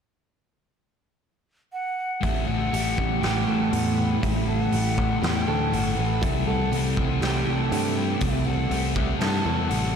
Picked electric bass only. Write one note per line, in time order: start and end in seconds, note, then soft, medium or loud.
2.23 2.45 A1 medium
2.48 2.69 A1 medium
2.73 2.95 A1 medium
2.98 3.20 A1 medium
3.23 3.45 A1 medium
3.48 3.70 A1 medium
3.73 4.16 E2 medium
4.23 4.66 A1 medium
4.73 5.16 A1 medium
5.22 5.44 E2 medium
5.48 5.70 D2 medium
5.73 5.94 G1 medium
5.99 6.20 A1 medium
6.23 6.44 C2 medium
6.47 6.69 C2 medium
6.72 6.94 C2 medium
6.97 7.19 C2 medium
7.22 7.44 C2 medium
7.47 7.68 C2 medium
7.72 8.15 G2 loud
8.21 8.64 C2 medium
8.71 9.14 C2 medium
9.21 9.42 G2 medium
9.45 9.67 E2 medium
9.70 9.92 A1 medium